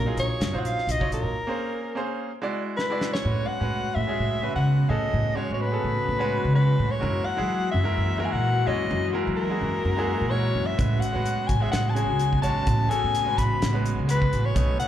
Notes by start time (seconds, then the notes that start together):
Already playing: A#4
0.06 F#3 D#4 F4 G#4
0.17 A#1 C#5, closed hi-hat
0.40 F#2, snare, closed hi-hat
0.52 A#1 F#3 D#4 F4 C5
0.59 F#5
0.65 F5, closed hi-hat
0.78 snare
0.87 A#1 D#5, closed hi-hat
0.99 F#3 D#4 F4 C#5, muted upright bass stroke, kick
1.11 A#1 A#4, closed hi-hat
1.24 A#2
1.47 A#3 C#4 G#4 C5
1.95 A#3 C#4 G#4 C5
2.42 G#3 E4 F#4 D5
2.77 B4, snare
2.90 G#3 E4 F#4 D5
3.01 snare
3.13 C#5, snare
3.24 A2 C#3 F#3 G#3 B3 C#4 F#4 B4
3.47 F#5
3.60 A2 G#3 C#4 F#4 B4
3.95 A2 E5
4.07 G#3 C#4 F#4 G#4
4.20 A2
4.42 G#3 C#4 F#4 B4
4.56 C#3 F#5
4.89 A2 C#4 F#4 G#4 A4 D#5
5.14 A2
5.35 G#3 C#4 F#4 C#5
5.50 A2 C#5
5.61 B4
5.72 C#4 F#4 G#4 A4
5.84 A2
6.08 A2
6.19 G#3 C#4 F#4 B4
6.45 C#3
6.53 G#3 C#4 F#4 B4 C#5
6.79 A2
6.91 C#5
7.00 F#2 E3 G#3 A#3 E4 F#4 A#4
7.25 F#5
7.37 F#3 G#3 E4 F#4 G#4
7.71 F#2 E5
7.83 G#3 E4 F#4 A#4
7.98 F#2
8.18 G#3 E4 F#4 A#4
8.25 G#5
8.31 A#2 F#5
8.66 F#2 G#3 E4 F#4 C#5 D#5
8.91 F#2
9.13 G#3 E4 F#4 A#4
9.27 F#3
9.37 A#4
9.49 G#3 E4 F#4 G#4
9.61 F#2
9.85 F#2
9.97 G#3 E4 F#4 G#4
10.21 A#2
10.30 G#3 E4 F#4 A#4 C#5
10.55 F#2
10.67 E5
10.78 A1 C#3 G#3 B3 C#4 F#4 B4, kick, closed hi-hat
11.00 F#5, closed hi-hat
11.13 A2 G#3 C#4 F#4 B4
11.26 closed hi-hat
11.48 A1 G#5, kick, closed hi-hat
11.60 G#3 C#4 F#4 G#4 E5
11.72 A1 F#5, snare, closed hi-hat
11.90 A5
11.95 G#3 C#4 F#4 G#4 G#5, closed hi-hat
12.10 C#2
12.19 closed hi-hat
12.33 kick
12.42 A1 G#3 C#4 F#4 C#5 A5, closed hi-hat
12.67 A1, kick, closed hi-hat
12.89 C#4 F#4 G#4 A4 G#5, closed hi-hat
13.04 A2
13.15 closed hi-hat
13.25 G#3 C#4 F#4 B4
13.38 A1 B5, kick, snare, closed hi-hat
13.62 A1, snare, closed hi-hat
13.73 G#3 C#4 F#4 B4
13.86 closed hi-hat
13.99 C#2
14.07 G#3 C#4 F#4 B4, closed hi-hat
14.22 kick
14.33 A1, closed hi-hat
14.46 C#5
14.54 B1 D#3 A3 C#4 D#4 B4, kick, closed hi-hat
14.80 F#5, closed hi-hat